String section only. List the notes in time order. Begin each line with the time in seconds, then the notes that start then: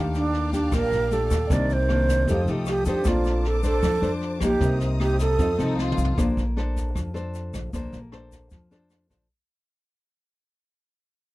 Already playing: F5 G5 A5 D6
1.50 A#4 D5
2.29 A4 G5 D#6
3.05 C5 A5 D6
4.61 C5 A#5 D#6
5.39 A4 F5